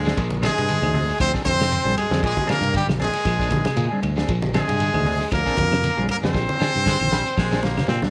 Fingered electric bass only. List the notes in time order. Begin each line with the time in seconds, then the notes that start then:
Already playing: D2
0.18 A#1
0.58 G2
0.82 D2
1.20 D2
1.46 F2
1.85 A#1
2.11 F2
2.23 A#1
2.48 muted fingered electric bass stroke
2.61 G2
2.87 A#1
3.25 A#1
3.77 A#2
4.03 D2
4.29 A#1
4.68 G2
4.94 D2
5.32 D2
5.58 F2
5.97 A#1
6.24 F2
6.35 A#1
6.61 muted fingered electric bass stroke
6.76 G2
7.01 A#1
7.37 A#1
7.88 A#2